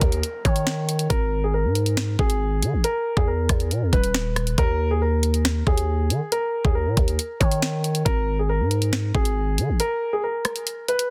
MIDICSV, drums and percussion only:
0, 0, Header, 1, 2, 480
1, 0, Start_track
1, 0, Tempo, 434783
1, 1217, Time_signature, 4, 2, 24, 8
1, 12257, End_track
2, 0, Start_track
2, 0, Title_t, "Drums"
2, 16, Note_on_c, 9, 36, 101
2, 16, Note_on_c, 9, 42, 80
2, 126, Note_off_c, 9, 42, 0
2, 127, Note_off_c, 9, 36, 0
2, 135, Note_on_c, 9, 42, 66
2, 245, Note_off_c, 9, 42, 0
2, 258, Note_on_c, 9, 42, 85
2, 369, Note_off_c, 9, 42, 0
2, 497, Note_on_c, 9, 36, 94
2, 498, Note_on_c, 9, 42, 72
2, 607, Note_off_c, 9, 36, 0
2, 608, Note_off_c, 9, 42, 0
2, 615, Note_on_c, 9, 42, 86
2, 726, Note_off_c, 9, 42, 0
2, 736, Note_on_c, 9, 38, 111
2, 738, Note_on_c, 9, 26, 85
2, 847, Note_off_c, 9, 38, 0
2, 848, Note_off_c, 9, 26, 0
2, 979, Note_on_c, 9, 42, 85
2, 1089, Note_off_c, 9, 42, 0
2, 1095, Note_on_c, 9, 42, 79
2, 1205, Note_off_c, 9, 42, 0
2, 1217, Note_on_c, 9, 36, 122
2, 1217, Note_on_c, 9, 42, 90
2, 1327, Note_off_c, 9, 36, 0
2, 1327, Note_off_c, 9, 42, 0
2, 1936, Note_on_c, 9, 42, 79
2, 2047, Note_off_c, 9, 42, 0
2, 2056, Note_on_c, 9, 42, 65
2, 2166, Note_off_c, 9, 42, 0
2, 2176, Note_on_c, 9, 38, 113
2, 2178, Note_on_c, 9, 26, 89
2, 2178, Note_on_c, 9, 42, 82
2, 2287, Note_off_c, 9, 38, 0
2, 2288, Note_off_c, 9, 26, 0
2, 2288, Note_off_c, 9, 42, 0
2, 2417, Note_on_c, 9, 36, 98
2, 2528, Note_off_c, 9, 36, 0
2, 2536, Note_on_c, 9, 42, 87
2, 2646, Note_off_c, 9, 42, 0
2, 2898, Note_on_c, 9, 42, 83
2, 3009, Note_off_c, 9, 42, 0
2, 3137, Note_on_c, 9, 42, 88
2, 3247, Note_off_c, 9, 42, 0
2, 3498, Note_on_c, 9, 36, 100
2, 3608, Note_off_c, 9, 36, 0
2, 3856, Note_on_c, 9, 42, 82
2, 3857, Note_on_c, 9, 36, 101
2, 3858, Note_on_c, 9, 37, 91
2, 3966, Note_off_c, 9, 42, 0
2, 3967, Note_off_c, 9, 36, 0
2, 3968, Note_off_c, 9, 37, 0
2, 3975, Note_on_c, 9, 42, 66
2, 4085, Note_off_c, 9, 42, 0
2, 4098, Note_on_c, 9, 42, 83
2, 4208, Note_off_c, 9, 42, 0
2, 4337, Note_on_c, 9, 36, 97
2, 4337, Note_on_c, 9, 42, 76
2, 4447, Note_off_c, 9, 36, 0
2, 4448, Note_off_c, 9, 42, 0
2, 4455, Note_on_c, 9, 42, 85
2, 4565, Note_off_c, 9, 42, 0
2, 4576, Note_on_c, 9, 38, 112
2, 4577, Note_on_c, 9, 26, 86
2, 4686, Note_off_c, 9, 38, 0
2, 4688, Note_off_c, 9, 26, 0
2, 4816, Note_on_c, 9, 37, 97
2, 4818, Note_on_c, 9, 42, 82
2, 4927, Note_off_c, 9, 37, 0
2, 4928, Note_off_c, 9, 42, 0
2, 4934, Note_on_c, 9, 42, 79
2, 5044, Note_off_c, 9, 42, 0
2, 5056, Note_on_c, 9, 36, 121
2, 5056, Note_on_c, 9, 42, 90
2, 5166, Note_off_c, 9, 42, 0
2, 5167, Note_off_c, 9, 36, 0
2, 5775, Note_on_c, 9, 42, 81
2, 5885, Note_off_c, 9, 42, 0
2, 5895, Note_on_c, 9, 42, 66
2, 6005, Note_off_c, 9, 42, 0
2, 6016, Note_on_c, 9, 38, 109
2, 6018, Note_on_c, 9, 26, 93
2, 6018, Note_on_c, 9, 42, 86
2, 6126, Note_off_c, 9, 38, 0
2, 6128, Note_off_c, 9, 26, 0
2, 6128, Note_off_c, 9, 42, 0
2, 6257, Note_on_c, 9, 36, 99
2, 6367, Note_off_c, 9, 36, 0
2, 6376, Note_on_c, 9, 42, 86
2, 6486, Note_off_c, 9, 42, 0
2, 6738, Note_on_c, 9, 42, 80
2, 6849, Note_off_c, 9, 42, 0
2, 6977, Note_on_c, 9, 42, 90
2, 7088, Note_off_c, 9, 42, 0
2, 7338, Note_on_c, 9, 36, 101
2, 7448, Note_off_c, 9, 36, 0
2, 7695, Note_on_c, 9, 42, 82
2, 7696, Note_on_c, 9, 36, 97
2, 7806, Note_off_c, 9, 42, 0
2, 7807, Note_off_c, 9, 36, 0
2, 7815, Note_on_c, 9, 42, 69
2, 7925, Note_off_c, 9, 42, 0
2, 7937, Note_on_c, 9, 42, 83
2, 8048, Note_off_c, 9, 42, 0
2, 8177, Note_on_c, 9, 36, 93
2, 8178, Note_on_c, 9, 42, 76
2, 8287, Note_off_c, 9, 36, 0
2, 8289, Note_off_c, 9, 42, 0
2, 8296, Note_on_c, 9, 42, 88
2, 8407, Note_off_c, 9, 42, 0
2, 8417, Note_on_c, 9, 38, 114
2, 8419, Note_on_c, 9, 26, 89
2, 8527, Note_off_c, 9, 38, 0
2, 8529, Note_off_c, 9, 26, 0
2, 8658, Note_on_c, 9, 42, 80
2, 8768, Note_off_c, 9, 42, 0
2, 8775, Note_on_c, 9, 42, 76
2, 8885, Note_off_c, 9, 42, 0
2, 8897, Note_on_c, 9, 36, 124
2, 8897, Note_on_c, 9, 42, 88
2, 9007, Note_off_c, 9, 36, 0
2, 9007, Note_off_c, 9, 42, 0
2, 9616, Note_on_c, 9, 42, 77
2, 9726, Note_off_c, 9, 42, 0
2, 9735, Note_on_c, 9, 42, 66
2, 9845, Note_off_c, 9, 42, 0
2, 9856, Note_on_c, 9, 38, 114
2, 9857, Note_on_c, 9, 26, 91
2, 9858, Note_on_c, 9, 42, 82
2, 9966, Note_off_c, 9, 38, 0
2, 9968, Note_off_c, 9, 26, 0
2, 9968, Note_off_c, 9, 42, 0
2, 10097, Note_on_c, 9, 36, 95
2, 10207, Note_off_c, 9, 36, 0
2, 10215, Note_on_c, 9, 42, 88
2, 10325, Note_off_c, 9, 42, 0
2, 10578, Note_on_c, 9, 42, 79
2, 10688, Note_off_c, 9, 42, 0
2, 10816, Note_on_c, 9, 42, 90
2, 10926, Note_off_c, 9, 42, 0
2, 11535, Note_on_c, 9, 42, 78
2, 11537, Note_on_c, 9, 37, 95
2, 11646, Note_off_c, 9, 42, 0
2, 11648, Note_off_c, 9, 37, 0
2, 11654, Note_on_c, 9, 42, 64
2, 11765, Note_off_c, 9, 42, 0
2, 11776, Note_on_c, 9, 42, 87
2, 11887, Note_off_c, 9, 42, 0
2, 12016, Note_on_c, 9, 42, 75
2, 12127, Note_off_c, 9, 42, 0
2, 12135, Note_on_c, 9, 42, 88
2, 12245, Note_off_c, 9, 42, 0
2, 12257, End_track
0, 0, End_of_file